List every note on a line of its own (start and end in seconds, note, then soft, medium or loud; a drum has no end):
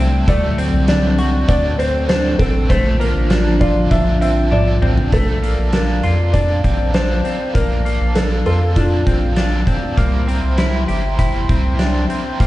0.00 0.27 C2 medium
0.00 0.24 C3 medium
0.00 0.23 G3 medium
0.00 0.23 A3 medium
0.00 0.28 C4 soft
0.00 0.28 E4 medium
0.00 0.27 A4 medium
0.27 0.71 D2 loud
0.27 0.58 D3 medium
0.27 5.09 D3 medium
0.27 0.58 E3 medium
0.27 2.68 F#3 medium
0.27 0.58 A3 medium
0.27 2.68 C4 medium
0.27 0.58 D4 medium
0.27 0.57 F#4 medium
0.27 0.56 C5 medium
0.27 0.87 D5 medium
0.27 kick loud
0.27 closed hi-hat medium
0.57 0.88 A3 soft
0.57 0.88 C4 medium
0.57 0.88 D4 soft
0.57 0.88 F#4 medium
0.57 0.88 C5 medium
0.57 closed hi-hat medium
0.73 1.45 C2 medium
0.88 1.18 D3 medium
0.88 1.19 E3 medium
0.88 1.19 A3 medium
0.88 1.19 D4 medium
0.88 1.18 F#4 medium
0.88 1.17 C5 medium
0.88 1.47 D5 medium
0.88 snare loud
0.88 closed hi-hat medium
0.88 tambourine medium
1.18 1.47 A3 soft
1.18 1.48 D4 soft
1.18 1.49 F#4 soft
1.18 1.49 C5 soft
1.18 closed hi-hat soft
1.48 2.36 D2 loud
1.48 1.79 A3 medium
1.48 1.80 D4 medium
1.48 1.79 F#4 medium
1.48 1.77 C5 medium
1.48 1.80 D5 medium
1.48 kick medium
1.48 closed hi-hat medium
1.79 2.09 A3 medium
1.79 2.09 C4 medium
1.79 2.09 D4 soft
1.79 2.10 F#4 medium
1.79 2.09 C5 medium
1.79 2.07 C5 medium
1.79 closed hi-hat medium
2.09 2.40 D3 medium
2.09 2.40 E3 medium
2.09 2.40 A3 medium
2.09 2.40 D4 medium
2.09 2.39 F#4 medium
2.09 2.40 C5 medium
2.09 2.38 C5 medium
2.09 snare loud
2.09 closed hi-hat medium
2.09 tambourine medium
2.39 2.68 A1 medium
2.39 2.68 A3 soft
2.39 2.70 C4 medium
2.39 2.69 D4 soft
2.39 2.70 F#4 soft
2.39 2.71 A4 medium
2.39 2.70 C5 medium
2.39 kick medium
2.39 closed hi-hat soft
2.69 3.13 A#1 loud
2.69 5.10 F3 medium
2.69 3.00 A3 medium
2.69 3.00 A#3 medium
2.69 3.00 D4 medium
2.69 5.10 D4 medium
2.69 5.10 F4 medium
2.69 3.00 F4 medium
2.69 3.01 A4 medium
2.69 2.98 C5 medium
2.69 kick loud
2.69 closed hi-hat medium
3.00 3.31 A#3 medium
3.00 3.29 D4 soft
3.00 3.30 F4 medium
3.00 3.63 A#4 medium
3.00 closed hi-hat soft
3.15 3.87 A1 medium
3.29 3.60 A#3 medium
3.29 3.61 D4 medium
3.29 3.61 F4 medium
3.29 snare loud
3.29 closed hi-hat medium
3.29 tambourine medium
3.60 3.91 D4 soft
3.60 3.92 F4 soft
3.60 3.91 A4 medium
3.60 3.92 D5 loud
3.60 kick medium
3.60 closed hi-hat soft
3.91 4.78 A#1 loud
3.91 4.21 A#3 medium
3.91 4.22 D4 medium
3.91 4.22 F4 medium
3.91 4.20 A4 medium
3.91 4.20 E5 loud
3.91 kick medium
3.91 closed hi-hat medium
4.21 4.51 C4 medium
4.21 4.51 D4 medium
4.21 4.52 F4 medium
4.21 4.52 A4 medium
4.21 4.53 E5 medium
4.21 closed hi-hat medium
4.51 4.82 A#3 medium
4.51 4.82 D4 medium
4.51 4.82 F4 medium
4.51 4.80 A4 medium
4.51 4.95 D5 medium
4.51 high tom medium
4.81 5.11 A1 loud
4.81 5.12 C4 medium
4.81 5.13 D4 soft
4.81 5.13 F4 soft
4.81 5.12 A4 soft
4.81 mid tom medium
4.97 floor tom medium
5.12 5.56 A#1 loud
5.12 5.43 A#2 medium
5.12 5.43 D3 medium
5.12 5.43 F3 medium
5.12 5.42 A3 medium
5.12 5.43 A#3 medium
5.12 5.42 D4 medium
5.12 5.75 A4 medium
5.12 5.41 A4 medium
5.12 9.94 D5 medium
5.12 9.93 F5 medium
5.12 9.93 A5 medium
5.12 kick loud
5.12 closed hi-hat medium
5.42 5.73 F3 soft
5.42 5.73 A#3 soft
5.42 5.73 D4 soft
5.42 5.73 A4 medium
5.42 closed hi-hat soft
5.58 6.01 A#1 medium
5.73 6.03 A#2 medium
5.73 6.04 D3 medium
5.73 6.04 F3 medium
5.73 6.04 A#3 medium
5.73 6.03 D4 medium
5.73 6.36 A#4 medium
5.73 snare loud
5.73 closed hi-hat medium
6.03 6.61 F2 medium
6.03 6.32 F3 soft
6.03 6.33 A#3 soft
6.03 6.34 D4 soft
6.03 6.34 F4 medium
6.03 closed hi-hat soft
6.33 6.64 F3 medium
6.33 6.64 A#3 medium
6.33 6.63 D4 medium
6.33 6.62 A4 medium
6.33 6.96 D5 loud
6.33 kick medium
6.33 closed hi-hat medium
6.63 7.22 A#1 loud
6.63 6.94 F3 soft
6.63 6.94 A#3 soft
6.63 6.94 C4 medium
6.63 6.94 D4 medium
6.63 6.94 A4 medium
6.63 kick medium
6.63 closed hi-hat soft
6.94 7.24 A#2 medium
6.94 7.25 D3 medium
6.94 7.25 F3 medium
6.94 7.25 A#3 medium
6.94 7.24 D4 medium
6.94 7.23 A4 medium
6.94 7.57 C5 medium
6.94 snare loud
6.94 closed hi-hat medium
7.24 7.54 F3 soft
7.24 7.54 A#3 soft
7.24 7.55 C4 medium
7.24 7.55 D4 soft
7.24 7.55 A4 soft
7.24 closed hi-hat soft
7.54 7.98 A#1 loud
7.54 7.85 A#2 medium
7.54 7.85 D3 medium
7.54 7.85 F3 medium
7.54 7.86 A#3 medium
7.54 7.85 D4 medium
7.54 8.17 A#4 medium
7.54 kick medium
7.54 closed hi-hat medium
7.86 8.15 F3 soft
7.86 8.15 A#3 soft
7.86 8.15 D4 soft
7.86 closed hi-hat medium
8.01 8.44 A#1 medium
8.15 8.46 A#2 medium
8.15 8.46 D3 medium
8.15 8.46 F3 medium
8.15 8.46 A#3 medium
8.15 8.45 D4 medium
8.15 8.45 A4 medium
8.15 8.44 A4 medium
8.15 snare medium
8.15 closed hi-hat medium
8.45 9.04 F2 medium
8.45 8.74 F3 soft
8.45 8.75 A#3 soft
8.45 8.76 D4 soft
8.45 8.76 F4 medium
8.45 8.76 A4 medium
8.45 8.77 A4 medium
8.45 closed hi-hat soft
8.75 9.06 F3 medium
8.75 9.07 A#3 medium
8.75 9.05 D4 medium
8.75 9.63 F4 medium
8.75 9.04 A4 medium
8.75 kick medium
8.75 closed hi-hat medium
9.05 9.64 A#1 loud
9.05 9.36 F3 soft
9.05 9.36 A#3 medium
9.05 9.36 C4 medium
9.05 9.37 D4 soft
9.05 9.36 A4 medium
9.05 kick medium
9.05 closed hi-hat soft
9.36 9.67 A#2 medium
9.36 9.67 D3 medium
9.36 9.67 F3 medium
9.36 9.67 A#3 medium
9.36 9.66 D4 medium
9.36 9.65 A4 medium
9.36 snare medium
9.36 closed hi-hat medium
9.66 9.97 F3 soft
9.66 9.97 A#3 soft
9.66 9.97 C4 medium
9.66 9.98 D4 medium
9.66 9.97 A4 medium
9.66 kick medium
9.66 closed hi-hat soft
9.97 10.41 C2 loud
9.97 10.27 C3 medium
9.97 10.28 G3 medium
9.97 10.28 A#3 medium
9.97 10.27 E4 medium
9.97 10.25 A#4 loud
9.97 12.47 C5 medium
9.97 12.47 E5 medium
9.97 12.47 G5 medium
9.97 12.47 C6 medium
9.97 kick loud
9.97 closed hi-hat medium
10.27 10.57 A#3 soft
10.27 10.58 C4 medium
10.27 10.58 E4 medium
10.27 10.57 A#4 medium
10.27 closed hi-hat soft
10.43 10.86 C2 medium
10.57 10.88 C3 medium
10.57 10.88 G3 medium
10.57 10.89 A#3 medium
10.57 10.88 E4 medium
10.57 10.86 A#4 loud
10.57 snare loud
10.57 closed hi-hat medium
10.87 11.46 G1 medium
10.87 11.17 A#3 soft
10.87 11.18 E4 soft
10.87 11.18 G4 medium
10.87 11.18 A#4 medium
10.87 closed hi-hat soft
11.17 11.48 G3 medium
11.17 11.49 A#3 medium
11.17 11.48 E4 medium
11.17 11.46 A#4 medium
11.17 kick medium
11.17 closed hi-hat medium
11.47 12.07 C2 loud
11.47 11.79 A#3 soft
11.47 11.79 C4 medium
11.47 11.80 E4 medium
11.47 11.79 A#4 medium
11.47 kick medium
11.47 closed hi-hat soft
11.79 12.09 C3 medium
11.79 12.10 G3 medium
11.79 12.10 A#3 medium
11.79 12.09 D4 medium
11.79 12.10 E4 medium
11.79 12.08 A#4 medium
11.79 snare medium
11.79 closed hi-hat medium
12.09 12.40 A#3 soft
12.09 12.40 C4 medium
12.09 12.40 E4 medium
12.09 12.40 A#4 medium
12.09 closed hi-hat soft
12.40 12.47 C2 loud
12.40 12.47 C3 medium
12.40 12.47 G3 medium
12.40 12.47 A#3 medium
12.40 12.47 E4 medium
12.40 12.47 A#4 medium
12.40 kick loud
12.40 closed hi-hat medium